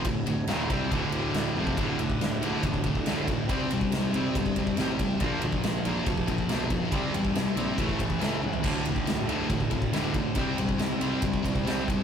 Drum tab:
CC |----------------|----------------|----------------|----------------|
RD |x-x-x-x-x-x-x---|x-x-x-x-x-x-x-x-|x-x-x-x-x-x-x-x-|x-x-x-x-x-x-x-x-|
SD |----o-------o---|----o-------o---|----o-------o---|----o-------o---|
T1 |--------------o-|----------------|----------------|----------------|
FT |----------------|----------------|----------------|----------------|
BD |o-----o-o------o|o--o----oooo--o-|o--o----oooo--o-|o--o----oooo--o-|

CC |----------------|x---------------|----------------|
RD |x-x-x-x-x-x-x---|--x-x-x-x-x-x-x-|x-x-x-x-x-x-x-x-|
SD |----o-------o---|----o-------o---|----o-------o---|
T1 |--------------o-|----------------|----------------|
FT |---------------o|----------------|----------------|
BD |o--o----oooo----|o--o----oooo--o-|o--o----oooo--o-|